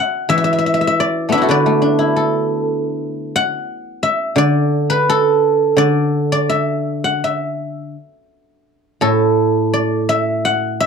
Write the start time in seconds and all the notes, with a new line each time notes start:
Already playing: D5 E5 A5 B5 D6
0.00 F#5
0.29 E3 E5
0.38 E5
0.44 E5
0.53 E5
0.59 E5
0.66 E5
0.74 E5
0.81 E5
0.87 E5
1.00 D5
1.29 A3 B3 E5
1.34 D4
1.38 E4 F#4
1.43 A4
1.49 D3 B4 D5
1.66 A3
1.82 D4
1.99 E4
2.16 A4
3.36 F#5
4.03 E5
4.36 D3 D5
4.90 B4
5.09 A4
5.77 D3 D5
6.32 D5
6.49 E5
7.04 F#5
7.24 E5
9.01 A2 A4
9.74 D5
10.09 E5
10.45 F#5
10.80 E5